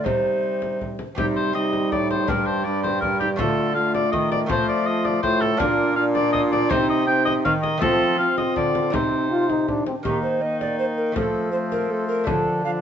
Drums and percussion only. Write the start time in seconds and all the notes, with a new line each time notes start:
0.06 frame drum
0.62 frame drum
0.81 frame drum
0.99 frame drum
1.18 frame drum
1.73 frame drum
1.92 frame drum
2.11 frame drum
2.28 frame drum
2.84 frame drum
3.02 frame drum
3.21 frame drum
3.39 frame drum
3.95 frame drum
4.13 frame drum
4.32 frame drum
4.49 frame drum
5.05 frame drum
5.23 frame drum
5.42 frame drum
5.60 frame drum
6.15 frame drum
6.34 frame drum
6.53 frame drum
6.71 frame drum
7.27 frame drum
7.46 frame drum
7.64 frame drum
7.82 frame drum
8.38 frame drum
8.56 frame drum
8.75 frame drum
8.94 frame drum
9.50 frame drum
9.68 frame drum
9.87 frame drum
10.05 frame drum
10.61 frame drum
11.16 frame drum
11.72 frame drum
12.27 frame drum